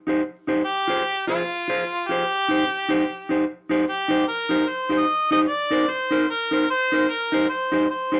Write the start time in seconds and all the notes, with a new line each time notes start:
0.07 D#4 G4 C5
0.47 D#4 G4 C5
0.65 G4
0.88 F4 G#4 C5
1.27 F4 G#4 C5
1.68 F4 G#4 C5
2.07 F4 G4 G#4
2.11 C5
2.48 D#4 G4 C5
2.67 muted clean electric guitar stroke
2.89 D#4 G4 C5
3.29 D#4 G4 C5
3.69 D#4 G4 C5
3.89 G4
4.08 D#4 G4 C5
4.28 A#4
4.49 D#4 G4 C5
4.68 C5
4.89 D#4 G4 C5
4.99 D#5
5.31 D#4 G4 C5 D#5
5.48 D5
5.70 D#4 A#4 C5
5.88 C5, muted clean electric guitar stroke
6.11 D#4 A#4 C5
6.30 A#4
6.51 D#4 A#4 C5
6.70 C5
6.92 D#4 A#4 C5
7.10 A#4
7.32 D#4 G4 C5
7.49 C5
7.72 D#4 G4 C5
7.91 C5
8.12 D#4 G4 C5